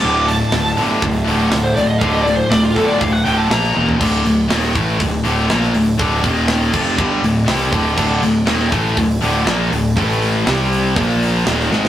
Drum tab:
CC |----------------|----------------|x---------------|------x---------|
HH |--o-o-o-o-o-o-o-|o-o-o-o-o-o-o---|--o-o-o-o-o-o-o-|o-o-o-----o-o-o-|
SD |----oo------o---|----o-------oo--|----oo------oo--|----o-------oo--|
T1 |----------------|--------------o-|----------------|----------------|
FT |----------------|---------------o|----------------|----------------|
BD |--------o-------|o-----o-o-------|o-----o-o-------|o-o---o-o-----o-|

CC |x---------------|----------------|
HH |--o-o-o-o-o-o-o-|o-o-o-o-o-o-o---|
SD |----oo------o---|----o-------oooo|
T1 |----------------|----------------|
FT |----------------|----------------|
BD |o-----o-o-------|o-------o-------|